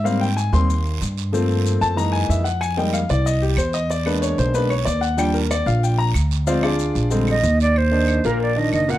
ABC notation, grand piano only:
X:1
M:4/4
L:1/8
Q:1/4=187
K:Bbmix
V:1 name="Grand piano"
f g a c'3 z2 | z3 =a ^a ^g =e ^f | a g f d e G c e | d =B _d c B d =d ^f |
g B d f g b z2 | [Fcdf] [DFAd]3 z4 | [K:Cm] z [E,DE]2 [B,,B,B]2 [E,DE]2 [B,,B,B] |]
V:2 name="Grand piano"
[G,B,C] z2 [G,B,C] z4 | [F,=A,B,C]4 [=E,^G,^A,^D]3 z | z [G,A,B,E] z6 | z [^G,^A,D]3 [G,A,D] z3 |
[F,G,D] z6 z | [F,A,C] z3 [D,G,A,C] z3 | [K:Cm] z8 |]